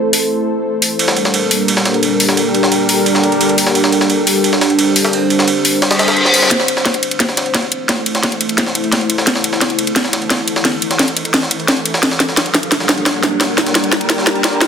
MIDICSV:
0, 0, Header, 1, 6, 480
1, 0, Start_track
1, 0, Tempo, 344828
1, 1382, Time_signature, 4, 2, 24, 8
1, 20429, End_track
2, 0, Start_track
2, 0, Title_t, "Ambient pad"
2, 0, Program_c, 0, 92
2, 0, Note_on_c, 0, 64, 85
2, 0, Note_on_c, 0, 69, 80
2, 0, Note_on_c, 0, 72, 82
2, 0, Note_on_c, 0, 81, 89
2, 1383, Note_off_c, 0, 69, 0
2, 1383, Note_off_c, 0, 72, 0
2, 1383, Note_on_c, 0, 62, 79
2, 1462, Note_on_c, 0, 67, 83
2, 1507, Note_on_c, 0, 58, 86
2, 1700, Note_on_c, 0, 79, 91
2, 2400, Note_off_c, 0, 64, 0
2, 3114, Note_off_c, 0, 81, 0
2, 5009, Note_on_c, 0, 72, 91
2, 5153, Note_off_c, 0, 58, 0
2, 9063, Note_on_c, 0, 64, 74
2, 9152, Note_on_c, 0, 69, 73
2, 9314, Note_on_c, 0, 81, 68
2, 9874, Note_off_c, 0, 67, 0
2, 9945, Note_off_c, 0, 79, 0
2, 10947, Note_off_c, 0, 62, 0
2, 16743, Note_off_c, 0, 69, 0
2, 16743, Note_on_c, 0, 62, 96
2, 16840, Note_on_c, 0, 67, 93
2, 17052, Note_on_c, 0, 58, 82
2, 17408, Note_on_c, 0, 79, 86
2, 17603, Note_off_c, 0, 72, 0
2, 18398, Note_off_c, 0, 64, 0
2, 18513, Note_off_c, 0, 81, 0
2, 20429, Note_off_c, 0, 58, 0
2, 20429, Note_off_c, 0, 62, 0
2, 20429, Note_off_c, 0, 67, 0
2, 20429, Note_off_c, 0, 79, 0
2, 20429, End_track
3, 0, Start_track
3, 0, Title_t, "Analog synth pad"
3, 0, Program_c, 1, 89
3, 0, Note_on_c, 1, 57, 74
3, 0, Note_on_c, 1, 64, 75
3, 0, Note_on_c, 1, 69, 71
3, 0, Note_on_c, 1, 72, 90
3, 1327, Note_off_c, 1, 57, 0
3, 1327, Note_off_c, 1, 64, 0
3, 1327, Note_off_c, 1, 72, 0
3, 1383, Note_on_c, 1, 55, 81
3, 1383, Note_on_c, 1, 62, 72
3, 1383, Note_on_c, 1, 70, 86
3, 9007, Note_off_c, 1, 55, 0
3, 9007, Note_off_c, 1, 62, 0
3, 9007, Note_off_c, 1, 69, 0
3, 9007, Note_off_c, 1, 70, 0
3, 9063, Note_on_c, 1, 57, 82
3, 9063, Note_on_c, 1, 64, 76
3, 9063, Note_on_c, 1, 69, 74
3, 9063, Note_on_c, 1, 72, 84
3, 16687, Note_off_c, 1, 57, 0
3, 16687, Note_off_c, 1, 64, 0
3, 16687, Note_off_c, 1, 72, 0
3, 16743, Note_on_c, 1, 55, 76
3, 16743, Note_on_c, 1, 62, 78
3, 16743, Note_on_c, 1, 70, 93
3, 20429, Note_off_c, 1, 55, 0
3, 20429, Note_off_c, 1, 62, 0
3, 20429, Note_off_c, 1, 69, 0
3, 20429, Note_off_c, 1, 70, 0
3, 20429, End_track
4, 0, Start_track
4, 0, Title_t, "Reverse cymbal"
4, 0, Program_c, 2, 119
4, 8103, Note_on_c, 2, 60, 75
4, 9063, Note_off_c, 2, 60, 0
4, 20429, End_track
5, 0, Start_track
5, 0, Title_t, "Riser"
5, 0, Program_c, 3, 103
5, 9063, Note_on_c, 3, 60, 77
5, 20429, Note_off_c, 3, 60, 0
5, 20429, End_track
6, 0, Start_track
6, 0, Title_t, "Drums"
6, 182, Note_on_c, 9, 46, 78
6, 322, Note_off_c, 9, 46, 0
6, 1142, Note_on_c, 9, 46, 74
6, 1281, Note_off_c, 9, 46, 0
6, 1382, Note_on_c, 9, 51, 88
6, 1502, Note_on_c, 9, 38, 52
6, 1521, Note_off_c, 9, 51, 0
6, 1622, Note_on_c, 9, 51, 65
6, 1641, Note_off_c, 9, 38, 0
6, 1742, Note_on_c, 9, 38, 43
6, 1762, Note_off_c, 9, 51, 0
6, 1862, Note_on_c, 9, 51, 83
6, 1881, Note_off_c, 9, 38, 0
6, 2001, Note_off_c, 9, 51, 0
6, 2102, Note_on_c, 9, 46, 79
6, 2102, Note_on_c, 9, 51, 68
6, 2241, Note_off_c, 9, 46, 0
6, 2242, Note_off_c, 9, 51, 0
6, 2342, Note_on_c, 9, 51, 87
6, 2462, Note_on_c, 9, 38, 44
6, 2481, Note_off_c, 9, 51, 0
6, 2582, Note_off_c, 9, 38, 0
6, 2582, Note_on_c, 9, 38, 53
6, 2582, Note_on_c, 9, 51, 63
6, 2702, Note_off_c, 9, 51, 0
6, 2702, Note_on_c, 9, 51, 43
6, 2721, Note_off_c, 9, 38, 0
6, 2822, Note_off_c, 9, 51, 0
6, 2822, Note_on_c, 9, 51, 83
6, 2961, Note_off_c, 9, 51, 0
6, 3062, Note_on_c, 9, 46, 76
6, 3062, Note_on_c, 9, 51, 63
6, 3182, Note_on_c, 9, 38, 53
6, 3201, Note_off_c, 9, 51, 0
6, 3202, Note_off_c, 9, 46, 0
6, 3302, Note_on_c, 9, 51, 90
6, 3321, Note_off_c, 9, 38, 0
6, 3441, Note_off_c, 9, 51, 0
6, 3542, Note_on_c, 9, 51, 62
6, 3662, Note_on_c, 9, 38, 40
6, 3682, Note_off_c, 9, 51, 0
6, 3782, Note_on_c, 9, 51, 84
6, 3802, Note_off_c, 9, 38, 0
6, 3921, Note_off_c, 9, 51, 0
6, 4022, Note_on_c, 9, 46, 78
6, 4022, Note_on_c, 9, 51, 66
6, 4161, Note_off_c, 9, 46, 0
6, 4161, Note_off_c, 9, 51, 0
6, 4262, Note_on_c, 9, 51, 86
6, 4383, Note_on_c, 9, 38, 38
6, 4401, Note_off_c, 9, 51, 0
6, 4503, Note_on_c, 9, 51, 62
6, 4522, Note_off_c, 9, 38, 0
6, 4622, Note_off_c, 9, 51, 0
6, 4622, Note_on_c, 9, 51, 42
6, 4742, Note_off_c, 9, 51, 0
6, 4742, Note_on_c, 9, 51, 88
6, 4863, Note_off_c, 9, 51, 0
6, 4863, Note_on_c, 9, 51, 44
6, 4982, Note_off_c, 9, 51, 0
6, 4982, Note_on_c, 9, 46, 75
6, 4982, Note_on_c, 9, 51, 64
6, 5102, Note_on_c, 9, 38, 52
6, 5121, Note_off_c, 9, 46, 0
6, 5121, Note_off_c, 9, 51, 0
6, 5222, Note_on_c, 9, 51, 88
6, 5242, Note_off_c, 9, 38, 0
6, 5343, Note_on_c, 9, 38, 51
6, 5361, Note_off_c, 9, 51, 0
6, 5462, Note_on_c, 9, 51, 64
6, 5482, Note_off_c, 9, 38, 0
6, 5583, Note_on_c, 9, 38, 43
6, 5602, Note_off_c, 9, 51, 0
6, 5703, Note_on_c, 9, 51, 76
6, 5722, Note_off_c, 9, 38, 0
6, 5842, Note_off_c, 9, 51, 0
6, 5943, Note_on_c, 9, 46, 79
6, 5943, Note_on_c, 9, 51, 69
6, 6082, Note_off_c, 9, 46, 0
6, 6082, Note_off_c, 9, 51, 0
6, 6183, Note_on_c, 9, 51, 83
6, 6303, Note_on_c, 9, 38, 43
6, 6322, Note_off_c, 9, 51, 0
6, 6422, Note_off_c, 9, 38, 0
6, 6422, Note_on_c, 9, 38, 56
6, 6422, Note_on_c, 9, 51, 65
6, 6543, Note_off_c, 9, 51, 0
6, 6543, Note_on_c, 9, 51, 41
6, 6562, Note_off_c, 9, 38, 0
6, 6662, Note_off_c, 9, 51, 0
6, 6662, Note_on_c, 9, 51, 84
6, 6802, Note_off_c, 9, 51, 0
6, 6903, Note_on_c, 9, 46, 76
6, 6903, Note_on_c, 9, 51, 69
6, 7023, Note_on_c, 9, 38, 52
6, 7042, Note_off_c, 9, 46, 0
6, 7042, Note_off_c, 9, 51, 0
6, 7143, Note_on_c, 9, 51, 88
6, 7162, Note_off_c, 9, 38, 0
6, 7282, Note_off_c, 9, 51, 0
6, 7383, Note_on_c, 9, 51, 65
6, 7503, Note_on_c, 9, 38, 39
6, 7522, Note_off_c, 9, 51, 0
6, 7622, Note_on_c, 9, 51, 80
6, 7642, Note_off_c, 9, 38, 0
6, 7762, Note_off_c, 9, 51, 0
6, 7863, Note_on_c, 9, 46, 78
6, 7863, Note_on_c, 9, 51, 69
6, 8002, Note_off_c, 9, 46, 0
6, 8002, Note_off_c, 9, 51, 0
6, 8103, Note_on_c, 9, 38, 101
6, 8103, Note_on_c, 9, 51, 75
6, 8222, Note_off_c, 9, 38, 0
6, 8222, Note_off_c, 9, 51, 0
6, 8222, Note_on_c, 9, 38, 107
6, 8222, Note_on_c, 9, 51, 76
6, 8342, Note_off_c, 9, 38, 0
6, 8342, Note_off_c, 9, 51, 0
6, 8342, Note_on_c, 9, 38, 105
6, 8342, Note_on_c, 9, 51, 76
6, 8463, Note_off_c, 9, 38, 0
6, 8463, Note_off_c, 9, 51, 0
6, 8463, Note_on_c, 9, 38, 109
6, 8463, Note_on_c, 9, 51, 77
6, 8583, Note_off_c, 9, 51, 0
6, 8583, Note_on_c, 9, 51, 59
6, 8602, Note_off_c, 9, 38, 0
6, 8702, Note_on_c, 9, 38, 40
6, 8722, Note_off_c, 9, 51, 0
6, 8822, Note_on_c, 9, 51, 69
6, 8823, Note_on_c, 9, 46, 74
6, 8842, Note_off_c, 9, 38, 0
6, 8942, Note_on_c, 9, 38, 55
6, 8961, Note_off_c, 9, 51, 0
6, 8962, Note_off_c, 9, 46, 0
6, 9062, Note_on_c, 9, 51, 87
6, 9063, Note_off_c, 9, 38, 0
6, 9063, Note_on_c, 9, 38, 49
6, 9063, Note_on_c, 9, 42, 93
6, 9182, Note_off_c, 9, 38, 0
6, 9182, Note_on_c, 9, 38, 55
6, 9201, Note_off_c, 9, 51, 0
6, 9202, Note_off_c, 9, 42, 0
6, 9302, Note_on_c, 9, 51, 66
6, 9303, Note_on_c, 9, 42, 66
6, 9321, Note_off_c, 9, 38, 0
6, 9422, Note_on_c, 9, 38, 43
6, 9441, Note_off_c, 9, 51, 0
6, 9442, Note_off_c, 9, 42, 0
6, 9541, Note_off_c, 9, 38, 0
6, 9541, Note_on_c, 9, 38, 102
6, 9541, Note_on_c, 9, 51, 78
6, 9543, Note_off_c, 9, 38, 0
6, 9543, Note_on_c, 9, 38, 49
6, 9543, Note_on_c, 9, 42, 96
6, 9663, Note_off_c, 9, 42, 0
6, 9663, Note_on_c, 9, 42, 39
6, 9681, Note_off_c, 9, 51, 0
6, 9682, Note_off_c, 9, 38, 0
6, 9782, Note_on_c, 9, 51, 70
6, 9783, Note_off_c, 9, 42, 0
6, 9783, Note_on_c, 9, 42, 68
6, 9903, Note_off_c, 9, 42, 0
6, 9903, Note_on_c, 9, 42, 37
6, 9921, Note_off_c, 9, 51, 0
6, 10022, Note_on_c, 9, 51, 86
6, 10023, Note_off_c, 9, 42, 0
6, 10023, Note_on_c, 9, 38, 52
6, 10023, Note_on_c, 9, 42, 97
6, 10142, Note_off_c, 9, 38, 0
6, 10142, Note_on_c, 9, 38, 44
6, 10161, Note_off_c, 9, 51, 0
6, 10162, Note_off_c, 9, 42, 0
6, 10262, Note_off_c, 9, 38, 0
6, 10262, Note_on_c, 9, 38, 54
6, 10262, Note_on_c, 9, 51, 67
6, 10263, Note_on_c, 9, 42, 70
6, 10382, Note_off_c, 9, 51, 0
6, 10382, Note_on_c, 9, 51, 44
6, 10401, Note_off_c, 9, 38, 0
6, 10402, Note_off_c, 9, 42, 0
6, 10502, Note_off_c, 9, 51, 0
6, 10502, Note_on_c, 9, 38, 52
6, 10502, Note_on_c, 9, 42, 95
6, 10502, Note_on_c, 9, 51, 82
6, 10641, Note_off_c, 9, 51, 0
6, 10642, Note_off_c, 9, 38, 0
6, 10642, Note_off_c, 9, 42, 0
6, 10742, Note_on_c, 9, 42, 63
6, 10881, Note_off_c, 9, 42, 0
6, 10982, Note_on_c, 9, 38, 52
6, 10982, Note_on_c, 9, 42, 96
6, 10982, Note_on_c, 9, 51, 81
6, 11121, Note_off_c, 9, 51, 0
6, 11122, Note_off_c, 9, 38, 0
6, 11122, Note_off_c, 9, 42, 0
6, 11222, Note_on_c, 9, 42, 61
6, 11222, Note_on_c, 9, 51, 65
6, 11342, Note_off_c, 9, 42, 0
6, 11342, Note_on_c, 9, 38, 41
6, 11342, Note_on_c, 9, 42, 36
6, 11361, Note_off_c, 9, 51, 0
6, 11462, Note_off_c, 9, 38, 0
6, 11462, Note_off_c, 9, 42, 0
6, 11462, Note_on_c, 9, 38, 57
6, 11462, Note_on_c, 9, 42, 94
6, 11462, Note_on_c, 9, 51, 86
6, 11582, Note_off_c, 9, 42, 0
6, 11582, Note_on_c, 9, 42, 36
6, 11601, Note_off_c, 9, 38, 0
6, 11601, Note_off_c, 9, 51, 0
6, 11702, Note_off_c, 9, 42, 0
6, 11702, Note_on_c, 9, 42, 67
6, 11702, Note_on_c, 9, 51, 72
6, 11822, Note_off_c, 9, 42, 0
6, 11822, Note_on_c, 9, 42, 36
6, 11841, Note_off_c, 9, 51, 0
6, 11942, Note_off_c, 9, 42, 0
6, 11942, Note_on_c, 9, 38, 57
6, 11942, Note_on_c, 9, 42, 96
6, 11942, Note_on_c, 9, 51, 85
6, 12062, Note_off_c, 9, 38, 0
6, 12062, Note_on_c, 9, 38, 39
6, 12081, Note_off_c, 9, 42, 0
6, 12081, Note_off_c, 9, 51, 0
6, 12182, Note_on_c, 9, 42, 65
6, 12182, Note_on_c, 9, 51, 65
6, 12201, Note_off_c, 9, 38, 0
6, 12302, Note_off_c, 9, 51, 0
6, 12302, Note_on_c, 9, 51, 43
6, 12321, Note_off_c, 9, 42, 0
6, 12422, Note_off_c, 9, 51, 0
6, 12422, Note_on_c, 9, 38, 54
6, 12422, Note_on_c, 9, 42, 92
6, 12422, Note_on_c, 9, 51, 83
6, 12542, Note_off_c, 9, 51, 0
6, 12542, Note_on_c, 9, 51, 45
6, 12561, Note_off_c, 9, 38, 0
6, 12561, Note_off_c, 9, 42, 0
6, 12662, Note_off_c, 9, 51, 0
6, 12662, Note_on_c, 9, 42, 62
6, 12662, Note_on_c, 9, 51, 64
6, 12782, Note_on_c, 9, 38, 54
6, 12801, Note_off_c, 9, 42, 0
6, 12801, Note_off_c, 9, 51, 0
6, 12902, Note_off_c, 9, 38, 0
6, 12902, Note_on_c, 9, 38, 60
6, 12902, Note_on_c, 9, 42, 90
6, 12902, Note_on_c, 9, 51, 93
6, 13022, Note_off_c, 9, 38, 0
6, 13022, Note_on_c, 9, 38, 54
6, 13041, Note_off_c, 9, 42, 0
6, 13041, Note_off_c, 9, 51, 0
6, 13142, Note_on_c, 9, 42, 63
6, 13142, Note_on_c, 9, 51, 64
6, 13161, Note_off_c, 9, 38, 0
6, 13262, Note_on_c, 9, 38, 43
6, 13281, Note_off_c, 9, 42, 0
6, 13281, Note_off_c, 9, 51, 0
6, 13382, Note_off_c, 9, 38, 0
6, 13382, Note_on_c, 9, 38, 62
6, 13382, Note_on_c, 9, 42, 93
6, 13382, Note_on_c, 9, 51, 82
6, 13502, Note_off_c, 9, 42, 0
6, 13502, Note_on_c, 9, 42, 36
6, 13521, Note_off_c, 9, 51, 0
6, 13522, Note_off_c, 9, 38, 0
6, 13622, Note_on_c, 9, 51, 68
6, 13623, Note_off_c, 9, 42, 0
6, 13623, Note_on_c, 9, 42, 69
6, 13742, Note_off_c, 9, 42, 0
6, 13742, Note_on_c, 9, 42, 34
6, 13761, Note_off_c, 9, 51, 0
6, 13862, Note_off_c, 9, 42, 0
6, 13862, Note_on_c, 9, 38, 64
6, 13862, Note_on_c, 9, 42, 91
6, 13862, Note_on_c, 9, 51, 89
6, 13982, Note_off_c, 9, 38, 0
6, 13982, Note_on_c, 9, 38, 44
6, 14001, Note_off_c, 9, 42, 0
6, 14001, Note_off_c, 9, 51, 0
6, 14102, Note_off_c, 9, 38, 0
6, 14102, Note_on_c, 9, 38, 53
6, 14102, Note_on_c, 9, 42, 65
6, 14102, Note_on_c, 9, 51, 64
6, 14222, Note_off_c, 9, 51, 0
6, 14222, Note_on_c, 9, 51, 44
6, 14241, Note_off_c, 9, 38, 0
6, 14242, Note_off_c, 9, 42, 0
6, 14342, Note_off_c, 9, 51, 0
6, 14342, Note_on_c, 9, 38, 67
6, 14342, Note_on_c, 9, 42, 85
6, 14342, Note_on_c, 9, 51, 82
6, 14481, Note_off_c, 9, 51, 0
6, 14482, Note_off_c, 9, 38, 0
6, 14482, Note_off_c, 9, 42, 0
6, 14582, Note_on_c, 9, 42, 60
6, 14582, Note_on_c, 9, 51, 68
6, 14702, Note_on_c, 9, 38, 55
6, 14721, Note_off_c, 9, 51, 0
6, 14722, Note_off_c, 9, 42, 0
6, 14822, Note_off_c, 9, 38, 0
6, 14822, Note_on_c, 9, 38, 66
6, 14822, Note_on_c, 9, 42, 87
6, 14822, Note_on_c, 9, 51, 91
6, 14961, Note_off_c, 9, 38, 0
6, 14961, Note_off_c, 9, 42, 0
6, 14961, Note_off_c, 9, 51, 0
6, 15062, Note_on_c, 9, 51, 66
6, 15063, Note_on_c, 9, 42, 62
6, 15182, Note_on_c, 9, 38, 40
6, 15183, Note_off_c, 9, 42, 0
6, 15183, Note_on_c, 9, 42, 36
6, 15201, Note_off_c, 9, 51, 0
6, 15302, Note_off_c, 9, 38, 0
6, 15302, Note_off_c, 9, 42, 0
6, 15302, Note_on_c, 9, 38, 70
6, 15302, Note_on_c, 9, 42, 92
6, 15302, Note_on_c, 9, 51, 83
6, 15423, Note_off_c, 9, 42, 0
6, 15423, Note_on_c, 9, 42, 36
6, 15441, Note_off_c, 9, 38, 0
6, 15441, Note_off_c, 9, 51, 0
6, 15542, Note_off_c, 9, 42, 0
6, 15542, Note_on_c, 9, 42, 61
6, 15542, Note_on_c, 9, 51, 73
6, 15662, Note_off_c, 9, 42, 0
6, 15662, Note_on_c, 9, 42, 34
6, 15681, Note_off_c, 9, 51, 0
6, 15782, Note_off_c, 9, 42, 0
6, 15782, Note_on_c, 9, 38, 70
6, 15782, Note_on_c, 9, 42, 91
6, 15782, Note_on_c, 9, 51, 86
6, 15902, Note_off_c, 9, 38, 0
6, 15902, Note_on_c, 9, 38, 41
6, 15921, Note_off_c, 9, 42, 0
6, 15921, Note_off_c, 9, 51, 0
6, 16022, Note_on_c, 9, 42, 63
6, 16022, Note_on_c, 9, 51, 68
6, 16041, Note_off_c, 9, 38, 0
6, 16142, Note_off_c, 9, 51, 0
6, 16142, Note_on_c, 9, 51, 45
6, 16162, Note_off_c, 9, 42, 0
6, 16262, Note_off_c, 9, 51, 0
6, 16262, Note_on_c, 9, 38, 117
6, 16262, Note_on_c, 9, 51, 85
6, 16263, Note_off_c, 9, 38, 0
6, 16263, Note_on_c, 9, 38, 71
6, 16263, Note_on_c, 9, 42, 88
6, 16383, Note_off_c, 9, 51, 0
6, 16383, Note_on_c, 9, 51, 46
6, 16402, Note_off_c, 9, 38, 0
6, 16402, Note_off_c, 9, 42, 0
6, 16502, Note_off_c, 9, 51, 0
6, 16502, Note_on_c, 9, 51, 68
6, 16503, Note_on_c, 9, 42, 63
6, 16622, Note_on_c, 9, 38, 57
6, 16641, Note_off_c, 9, 51, 0
6, 16642, Note_off_c, 9, 42, 0
6, 16742, Note_off_c, 9, 38, 0
6, 16742, Note_on_c, 9, 38, 76
6, 16742, Note_on_c, 9, 42, 87
6, 16742, Note_on_c, 9, 51, 93
6, 16863, Note_off_c, 9, 38, 0
6, 16863, Note_on_c, 9, 38, 56
6, 16882, Note_off_c, 9, 42, 0
6, 16882, Note_off_c, 9, 51, 0
6, 16982, Note_off_c, 9, 38, 0
6, 16982, Note_on_c, 9, 38, 76
6, 16982, Note_on_c, 9, 42, 61
6, 16982, Note_on_c, 9, 51, 68
6, 17103, Note_off_c, 9, 38, 0
6, 17103, Note_on_c, 9, 38, 44
6, 17122, Note_off_c, 9, 42, 0
6, 17122, Note_off_c, 9, 51, 0
6, 17222, Note_off_c, 9, 38, 0
6, 17222, Note_on_c, 9, 38, 114
6, 17222, Note_on_c, 9, 42, 90
6, 17222, Note_on_c, 9, 51, 84
6, 17342, Note_off_c, 9, 42, 0
6, 17342, Note_on_c, 9, 42, 34
6, 17362, Note_off_c, 9, 38, 0
6, 17362, Note_off_c, 9, 51, 0
6, 17462, Note_off_c, 9, 42, 0
6, 17462, Note_on_c, 9, 38, 78
6, 17462, Note_on_c, 9, 42, 64
6, 17462, Note_on_c, 9, 51, 72
6, 17582, Note_off_c, 9, 42, 0
6, 17582, Note_on_c, 9, 42, 35
6, 17602, Note_off_c, 9, 38, 0
6, 17602, Note_off_c, 9, 51, 0
6, 17702, Note_off_c, 9, 42, 0
6, 17702, Note_on_c, 9, 38, 79
6, 17702, Note_on_c, 9, 42, 91
6, 17702, Note_on_c, 9, 51, 82
6, 17822, Note_off_c, 9, 38, 0
6, 17822, Note_on_c, 9, 38, 48
6, 17841, Note_off_c, 9, 42, 0
6, 17841, Note_off_c, 9, 51, 0
6, 17942, Note_off_c, 9, 38, 0
6, 17942, Note_on_c, 9, 38, 80
6, 17942, Note_on_c, 9, 42, 65
6, 17942, Note_on_c, 9, 51, 67
6, 18062, Note_off_c, 9, 51, 0
6, 18062, Note_on_c, 9, 51, 45
6, 18082, Note_off_c, 9, 38, 0
6, 18082, Note_off_c, 9, 42, 0
6, 18181, Note_off_c, 9, 51, 0
6, 18181, Note_on_c, 9, 38, 121
6, 18181, Note_on_c, 9, 51, 84
6, 18182, Note_off_c, 9, 38, 0
6, 18182, Note_on_c, 9, 38, 78
6, 18182, Note_on_c, 9, 42, 89
6, 18320, Note_off_c, 9, 51, 0
6, 18321, Note_off_c, 9, 38, 0
6, 18321, Note_off_c, 9, 42, 0
6, 18422, Note_on_c, 9, 38, 81
6, 18422, Note_on_c, 9, 42, 63
6, 18561, Note_off_c, 9, 38, 0
6, 18561, Note_off_c, 9, 42, 0
6, 18661, Note_on_c, 9, 38, 103
6, 18661, Note_on_c, 9, 51, 84
6, 18662, Note_off_c, 9, 38, 0
6, 18662, Note_on_c, 9, 38, 83
6, 18662, Note_on_c, 9, 42, 94
6, 18801, Note_off_c, 9, 38, 0
6, 18801, Note_off_c, 9, 42, 0
6, 18801, Note_off_c, 9, 51, 0
6, 18902, Note_on_c, 9, 38, 83
6, 18902, Note_on_c, 9, 42, 62
6, 18902, Note_on_c, 9, 51, 68
6, 19022, Note_off_c, 9, 38, 0
6, 19022, Note_off_c, 9, 42, 0
6, 19022, Note_on_c, 9, 38, 42
6, 19022, Note_on_c, 9, 42, 35
6, 19041, Note_off_c, 9, 51, 0
6, 19141, Note_off_c, 9, 38, 0
6, 19141, Note_on_c, 9, 38, 110
6, 19141, Note_on_c, 9, 51, 81
6, 19142, Note_off_c, 9, 38, 0
6, 19142, Note_off_c, 9, 42, 0
6, 19142, Note_on_c, 9, 38, 85
6, 19142, Note_on_c, 9, 42, 96
6, 19262, Note_off_c, 9, 42, 0
6, 19262, Note_on_c, 9, 42, 38
6, 19281, Note_off_c, 9, 38, 0
6, 19281, Note_off_c, 9, 51, 0
6, 19382, Note_off_c, 9, 42, 0
6, 19382, Note_on_c, 9, 38, 91
6, 19382, Note_on_c, 9, 42, 69
6, 19382, Note_on_c, 9, 51, 75
6, 19502, Note_off_c, 9, 42, 0
6, 19502, Note_on_c, 9, 42, 37
6, 19521, Note_off_c, 9, 38, 0
6, 19521, Note_off_c, 9, 51, 0
6, 19622, Note_off_c, 9, 42, 0
6, 19622, Note_on_c, 9, 38, 91
6, 19622, Note_on_c, 9, 42, 93
6, 19622, Note_on_c, 9, 51, 89
6, 19742, Note_off_c, 9, 38, 0
6, 19742, Note_on_c, 9, 38, 40
6, 19761, Note_off_c, 9, 42, 0
6, 19761, Note_off_c, 9, 51, 0
6, 19862, Note_off_c, 9, 38, 0
6, 19862, Note_on_c, 9, 38, 93
6, 19862, Note_on_c, 9, 42, 69
6, 19862, Note_on_c, 9, 51, 67
6, 19982, Note_off_c, 9, 51, 0
6, 19982, Note_on_c, 9, 51, 46
6, 20001, Note_off_c, 9, 38, 0
6, 20001, Note_off_c, 9, 42, 0
6, 20102, Note_off_c, 9, 51, 0
6, 20102, Note_on_c, 9, 38, 90
6, 20102, Note_on_c, 9, 42, 96
6, 20102, Note_on_c, 9, 51, 93
6, 20222, Note_off_c, 9, 51, 0
6, 20222, Note_on_c, 9, 51, 45
6, 20241, Note_off_c, 9, 38, 0
6, 20241, Note_off_c, 9, 42, 0
6, 20342, Note_off_c, 9, 51, 0
6, 20342, Note_on_c, 9, 38, 84
6, 20342, Note_on_c, 9, 42, 67
6, 20342, Note_on_c, 9, 51, 71
6, 20429, Note_off_c, 9, 38, 0
6, 20429, Note_off_c, 9, 42, 0
6, 20429, Note_off_c, 9, 51, 0
6, 20429, End_track
0, 0, End_of_file